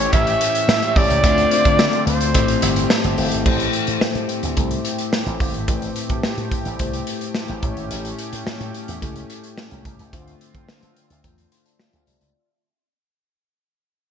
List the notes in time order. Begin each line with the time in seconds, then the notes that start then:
Already playing: A2 E3 A3 C#4 E4 G4 C5 C#5 B5
0.12 A1 A2 E3 A3 E5, kick, closed hi-hat, cowbell
0.27 closed hi-hat
0.41 closed hi-hat
0.55 closed hi-hat
0.67 A2 E3 A3, snare, tambourine, cowbell
0.82 closed hi-hat
0.96 A1 A3 C#4 E4 G4 C#5 D5, kick, open hi-hat
1.10 C#2, closed hi-hat
1.23 D2 D3 A3 C4 D4 F4 C5, kick, closed hi-hat, cowbell
1.38 closed hi-hat
1.51 A3 C4 D4 F4 C5, closed hi-hat
1.65 D3, kick, closed hi-hat
1.79 snare, tambourine, cowbell
1.93 closed hi-hat
2.07 D2 C5, closed hi-hat
2.21 closed hi-hat
2.34 A1 A2 E3 A3 C4 E4 G4 C5, kick, closed hi-hat, cowbell
2.48 closed hi-hat
2.62 G1, closed hi-hat, cowbell
2.76 closed hi-hat
2.90 A2 E3 A3 A5, snare, tambourine, cowbell
3.04 G1, closed hi-hat
3.18 G1 A3 C4 E4 G4 C5, open hi-hat
3.32 G#1, closed hi-hat
3.45 A1 A2 A3 C4 E4 G4 C5, kick, crash
3.60 closed hi-hat
3.73 closed hi-hat
3.87 A2, closed hi-hat
4.01 muted slap bass stroke, snare
4.15 A2, closed hi-hat
4.29 closed hi-hat
4.43 D2, closed hi-hat
4.56 C2 A3 E4 G4 A4, kick, closed hi-hat
4.71 closed hi-hat
4.85 closed hi-hat
4.99 closed hi-hat
5.13 snare
5.26 A1, closed hi-hat
5.40 G1, kick, open hi-hat
5.54 G#1, closed hi-hat
5.68 A1 A2 A3 E4 G4 B4, kick, closed hi-hat
5.75 C5
5.82 closed hi-hat
5.96 closed hi-hat
6.09 A2, kick, closed hi-hat
6.23 muted slap bass stroke, snare
6.38 A2, closed hi-hat
6.52 kick, closed hi-hat
6.65 A1, closed hi-hat
6.79 C2 A3 E4 G4 C5, kick, closed hi-hat
6.93 closed hi-hat
7.07 closed hi-hat
7.21 closed hi-hat
7.35 snare
7.48 A1, closed hi-hat
7.62 A1 A2 A3 C#4 E4 G4 C#5, kick, closed hi-hat
7.77 G#1, closed hi-hat
7.91 A1, closed hi-hat
8.05 closed hi-hat
8.18 closed hi-hat
8.33 A2, closed hi-hat
8.47 muted slap bass stroke, snare
8.61 A2, closed hi-hat
8.74 closed hi-hat
8.88 E2, closed hi-hat
9.01 C#2 A3 E4 G4 A4, kick, closed hi-hat
9.16 closed hi-hat
9.30 closed hi-hat
9.44 closed hi-hat
9.58 snare
9.71 C2, closed hi-hat
9.85 C2, kick, closed hi-hat
9.99 C#2, closed hi-hat
10.12 D2 D3 A3 C4 D4 F4 C5, kick, closed hi-hat
10.28 closed hi-hat
10.41 closed hi-hat
10.54 D3, kick, closed hi-hat
10.69 muted slap bass stroke, snare
10.83 D3, closed hi-hat
10.97 closed hi-hat
11.10 D2, closed hi-hat
11.23 E2 A3 D4 F4 C5, kick, closed hi-hat
11.38 closed hi-hat
11.52 C6, closed hi-hat
11.66 F4 D5 A5, closed hi-hat
11.80 G4 E5 F5, snare
11.93 D2 A4 F5, closed hi-hat
12.07 C2 G4 D5 E5, closed hi-hat
12.21 C#2 F4 D5, closed hi-hat